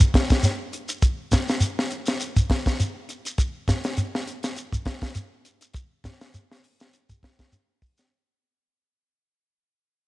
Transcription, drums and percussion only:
0.00 kick medium
0.00 shekere medium
0.14 kick medium
0.14 snare medium
0.14 closed hi-hat soft
0.30 kick medium
0.30 snare medium
0.30 closed hi-hat soft
0.30 shekere soft
0.43 snare soft
0.43 closed hi-hat medium
0.43 shekere medium
0.73 closed hi-hat soft
0.73 shekere soft
0.89 closed hi-hat soft
0.89 shekere medium
1.02 kick medium
1.02 closed hi-hat medium
1.02 shekere medium
1.32 kick medium
1.32 snare medium
1.32 closed hi-hat soft
1.32 shekere medium
1.49 snare medium
1.49 shekere soft
1.60 closed hi-hat medium
1.60 shekere medium
1.79 snare medium
1.91 closed hi-hat soft
1.91 shekere soft
2.06 snare medium
2.06 closed hi-hat soft
2.06 shekere medium
2.20 closed hi-hat medium
2.20 shekere medium
2.36 kick medium
2.36 shekere medium
2.50 kick medium
2.50 snare medium
2.50 closed hi-hat soft
2.66 kick medium
2.66 snare medium
2.66 closed hi-hat soft
2.66 shekere soft
2.80 closed hi-hat medium
2.80 shekere medium
3.09 closed hi-hat soft
3.09 shekere soft
3.25 closed hi-hat soft
3.25 shekere medium
3.38 kick medium
3.38 closed hi-hat medium
3.38 shekere medium
3.68 kick medium
3.68 snare medium
3.68 closed hi-hat medium
3.68 shekere medium
3.84 snare medium
3.84 closed hi-hat medium
3.84 shekere soft
3.97 closed hi-hat medium
3.97 shekere medium
4.15 snare medium
4.27 closed hi-hat medium
4.27 shekere soft
4.43 snare medium
4.43 closed hi-hat soft
4.43 shekere medium
4.56 closed hi-hat medium
4.56 shekere medium
4.73 kick medium
4.73 shekere medium
4.85 kick medium
4.85 snare medium
4.85 closed hi-hat soft
5.02 kick medium
5.02 snare medium
5.02 closed hi-hat soft
5.02 shekere soft
5.15 closed hi-hat medium
5.15 shekere medium
5.45 closed hi-hat soft
5.45 shekere soft
5.61 closed hi-hat soft
5.61 shekere medium
5.74 kick medium
5.74 closed hi-hat medium
5.74 shekere medium
6.04 kick medium
6.04 snare medium
6.04 closed hi-hat soft
6.04 shekere medium
6.21 snare medium
6.21 shekere soft
6.34 closed hi-hat medium
6.34 shekere medium
6.52 snare medium
6.64 open hi-hat medium
6.64 shekere soft
6.80 snare medium
6.80 closed hi-hat soft
6.80 shekere medium
6.93 closed hi-hat medium
6.93 shekere medium
7.09 kick medium
7.09 shekere medium
7.23 kick medium
7.23 snare medium
7.23 closed hi-hat soft
7.39 kick medium
7.39 snare medium
7.39 closed hi-hat soft
7.39 shekere soft
7.52 closed hi-hat medium
7.52 shekere medium
7.82 kick medium
7.82 open hi-hat soft
7.82 shekere soft
7.97 snare soft
7.97 closed hi-hat soft
7.97 shekere medium

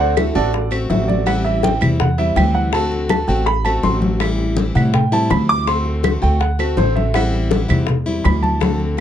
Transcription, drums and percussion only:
0.00 high conga soft
0.17 high bongo medium
0.17 high conga medium
0.17 claves medium
0.35 high bongo soft
0.35 high conga soft
0.54 high bongo medium
0.54 high conga soft
0.72 high bongo soft
0.72 high conga soft
0.72 claves medium
0.90 high bongo soft
0.90 low bongo medium
0.90 high conga medium
1.09 high conga medium
1.27 high bongo medium
1.27 high conga soft
1.27 claves medium
1.45 high bongo soft
1.45 high conga soft
1.63 high bongo medium
1.63 high conga loud
1.82 high bongo soft
1.82 high conga soft
1.82 low conga medium
1.82 claves medium
2.00 high bongo medium
2.00 high conga soft
2.00 low conga medium
2.18 high bongo soft
2.18 high conga soft
2.36 high bongo soft
2.36 low bongo medium
2.36 high conga medium
2.36 claves medium
2.73 high bongo medium
2.73 high conga soft
2.92 high bongo soft
2.92 high conga soft
3.09 high bongo medium
3.09 high conga medium
3.09 claves medium
3.28 high bongo soft
3.28 high conga soft
3.47 high bongo medium
3.47 high conga soft
3.65 high bongo soft
3.65 high conga soft
3.65 claves medium
3.83 high bongo soft
3.83 low bongo medium
3.83 high conga medium
4.02 high conga medium
4.20 high bongo medium
4.20 high conga soft
4.20 claves medium
4.38 high bongo soft
4.38 high conga soft
4.56 high bongo medium
4.56 high conga loud
4.75 high bongo soft
4.75 high conga soft
4.75 low conga medium
4.75 claves medium
4.94 high bongo medium
4.94 high conga soft
4.94 low conga medium
5.12 high bongo soft
5.12 high conga soft
5.30 high bongo soft
5.30 low bongo medium
5.30 high conga medium
5.30 claves medium
5.67 high bongo medium
5.67 high conga soft
5.86 high bongo soft
5.86 high conga soft
6.04 high bongo medium
6.04 high conga medium
6.04 claves medium
6.22 high bongo soft
6.22 high conga soft
6.41 high bongo medium
6.41 high conga soft
6.59 high bongo soft
6.59 high conga soft
6.59 claves medium
6.78 high bongo soft
6.78 low bongo medium
6.78 high conga medium
6.97 high conga medium
7.14 high bongo medium
7.14 high conga soft
7.14 claves medium
7.33 high bongo soft
7.33 high conga soft
7.51 high bongo medium
7.51 high conga medium
7.69 high bongo soft
7.69 high conga soft
7.69 low conga medium
7.69 claves medium
7.87 high bongo medium
7.87 high conga soft
7.87 low conga medium
8.06 high bongo soft
8.06 high conga soft
8.25 high bongo soft
8.25 low bongo medium
8.25 high conga medium
8.25 claves medium
8.44 high conga medium
8.61 high bongo medium
8.61 high conga loud
8.79 high bongo soft

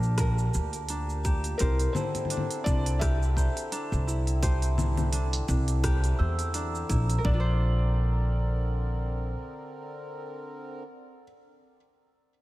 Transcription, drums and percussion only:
0.03 cabasa soft
0.18 kick loud
0.18 cross-stick medium
0.18 open hi-hat medium
0.18 cabasa soft
0.38 cabasa soft
0.54 cabasa medium
0.73 open hi-hat soft
0.73 cabasa soft
0.89 open hi-hat medium
0.89 cabasa soft
1.09 cabasa soft
1.25 kick loud
1.25 cabasa medium
1.44 open hi-hat soft
1.44 cabasa soft
1.59 kick loud
1.59 open hi-hat medium
1.59 cabasa soft
1.79 open hi-hat soft
1.79 cabasa soft
1.95 low conga medium
1.95 cabasa medium
2.15 open hi-hat soft
2.15 low conga soft
2.15 cabasa soft
2.25 low conga soft
2.30 open hi-hat medium
2.30 cabasa soft
2.37 low conga soft
2.51 open hi-hat soft
2.51 cabasa soft
2.66 kick loud
2.66 cabasa medium
2.86 open hi-hat soft
2.86 cabasa soft
3.01 kick loud
3.01 cross-stick medium
3.01 open hi-hat medium
3.01 cabasa soft
3.22 cabasa soft
3.37 kick medium
3.37 cabasa medium
3.57 open hi-hat soft
3.57 cabasa soft
3.72 open hi-hat medium
3.72 cabasa soft
3.93 cabasa soft
4.08 cabasa medium
4.27 open hi-hat soft
4.27 cabasa soft
4.43 kick loud
4.43 open hi-hat medium
4.43 cabasa soft
4.62 open hi-hat soft
4.62 cabasa soft
4.78 low conga medium
4.78 cabasa medium
4.97 open hi-hat soft
4.97 low conga medium
4.97 cabasa soft
5.13 open hi-hat medium
5.13 cabasa soft
5.33 open hi-hat soft
5.33 cabasa soft
5.48 kick medium
5.48 cabasa medium
5.68 open hi-hat soft
5.68 cabasa soft
5.84 kick loud
5.84 cross-stick medium
5.84 open hi-hat medium
5.84 cabasa soft
6.04 open hi-hat soft
6.04 cabasa soft
6.39 open hi-hat soft
6.39 cabasa soft
6.54 open hi-hat medium
6.54 cabasa soft
6.75 cabasa soft
6.89 kick medium
6.89 open hi-hat soft
6.89 cabasa medium
7.10 open hi-hat soft
7.10 cabasa soft
7.25 kick loud

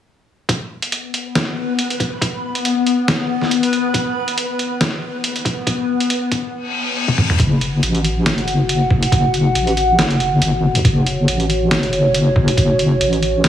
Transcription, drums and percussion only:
0.49 kick loud
0.49 closed hi-hat medium
0.82 closed hi-hat medium
0.92 closed hi-hat medium
1.14 closed hi-hat medium
1.35 snare loud
1.35 closed hi-hat medium
1.79 closed hi-hat medium
1.90 closed hi-hat medium
2.00 kick loud
2.00 closed hi-hat medium
2.22 kick loud
2.22 closed hi-hat medium
2.55 closed hi-hat medium
2.65 closed hi-hat medium
2.87 closed hi-hat soft
3.08 snare loud
3.08 closed hi-hat medium
3.41 snare soft
3.51 closed hi-hat medium
3.63 closed hi-hat medium
3.73 closed hi-hat medium
3.94 kick loud
3.94 closed hi-hat medium
4.28 closed hi-hat medium
4.38 closed hi-hat medium
4.59 closed hi-hat soft
4.81 snare loud
4.81 closed hi-hat medium
5.24 closed hi-hat medium
5.36 closed hi-hat soft
5.45 kick loud
5.45 closed hi-hat medium
5.67 kick loud
5.67 closed hi-hat medium
6.00 closed hi-hat soft
6.10 closed hi-hat medium
6.32 kick medium
6.32 closed hi-hat soft
7.08 high tom soft
7.18 mid tom medium
7.30 mid tom medium
7.39 kick loud
7.39 closed hi-hat medium
7.61 closed hi-hat medium
7.83 closed hi-hat medium
7.95 closed hi-hat soft
8.04 closed hi-hat medium
8.26 snare loud
8.26 closed hi-hat medium
8.38 closed hi-hat soft
8.48 closed hi-hat medium
8.69 closed hi-hat medium
8.91 kick loud
9.03 closed hi-hat medium
9.12 kick loud
9.12 closed hi-hat medium
9.34 closed hi-hat medium
9.55 closed hi-hat medium
9.67 closed hi-hat soft
9.77 closed hi-hat medium
9.99 snare loud
9.99 closed hi-hat medium
10.10 closed hi-hat soft
10.20 closed hi-hat medium
10.42 closed hi-hat medium
10.75 closed hi-hat medium
10.85 kick loud
10.85 closed hi-hat medium
11.06 closed hi-hat medium
11.28 closed hi-hat medium
11.40 closed hi-hat soft
11.50 closed hi-hat soft
11.71 snare loud
11.71 closed hi-hat medium
11.83 closed hi-hat soft
11.93 closed hi-hat medium
12.14 closed hi-hat medium
12.36 kick loud
12.48 closed hi-hat medium
12.57 kick loud
12.57 closed hi-hat medium
12.79 closed hi-hat medium
13.01 closed hi-hat medium
13.13 closed hi-hat soft
13.23 closed hi-hat medium
13.44 snare loud
13.44 closed hi-hat medium

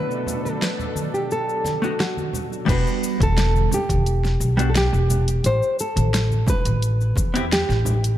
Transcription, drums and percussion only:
0.11 cabasa soft
0.27 low conga medium
0.27 cabasa medium
0.45 high conga medium
0.45 cabasa soft
0.62 snare medium
0.62 cabasa soft
0.79 muted conga soft
0.79 low conga medium
0.79 cabasa soft
0.96 high conga medium
0.96 cabasa medium
1.15 cabasa soft
1.31 cabasa soft
1.49 cabasa soft
1.65 snare soft
1.65 muted conga medium
1.65 high conga medium
1.65 cabasa medium
1.82 muted conga medium
1.82 cabasa soft
2.00 snare medium
2.00 cabasa soft
2.17 muted conga soft
2.17 high conga medium
2.17 cabasa soft
2.33 low conga medium
2.33 cabasa medium
2.53 cabasa soft
2.68 kick loud
2.68 closed hi-hat soft
2.68 crash loud
2.68 cabasa soft
2.87 cabasa soft
3.04 cabasa medium
3.20 kick loud
3.20 closed hi-hat medium
3.20 high conga medium
3.20 cabasa soft
3.38 snare loud
3.38 closed hi-hat soft
3.38 cabasa soft
3.54 high conga medium
3.54 cabasa soft
3.71 low conga medium
3.71 cabasa medium
3.89 kick medium
3.89 closed hi-hat medium
3.89 high conga loud
3.89 cabasa soft
4.06 closed hi-hat soft
4.06 cabasa soft
4.24 snare soft
4.24 cabasa soft
4.40 muted conga medium
4.40 cabasa medium
4.59 closed hi-hat medium
4.59 cabasa soft
4.75 snare loud
4.75 closed hi-hat soft
4.75 cabasa soft
4.94 cabasa soft
5.10 muted conga medium
5.10 low conga medium
5.10 cabasa medium
5.28 closed hi-hat medium
5.28 cabasa soft
5.44 closed hi-hat soft
5.44 cabasa soft
5.63 cabasa soft
5.79 cabasa medium
5.96 closed hi-hat medium
5.96 high conga loud
5.96 cabasa soft
6.14 snare loud
6.14 closed hi-hat soft
6.14 cabasa soft
6.30 muted conga soft
6.30 high conga medium
6.30 cabasa soft
6.46 kick loud
6.46 low conga loud
6.46 cabasa medium
6.65 closed hi-hat medium
6.65 high conga medium
6.65 cabasa soft
6.82 closed hi-hat soft
6.82 cabasa soft
7.01 cabasa soft
7.16 kick medium
7.16 muted conga medium
7.16 cabasa medium
7.34 closed hi-hat medium
7.34 muted conga medium
7.34 cabasa soft
7.52 snare loud
7.52 closed hi-hat soft
7.52 cabasa soft
7.70 snare soft
7.70 cabasa soft
7.85 low conga loud
7.85 cabasa medium
8.04 closed hi-hat medium
8.04 cabasa soft

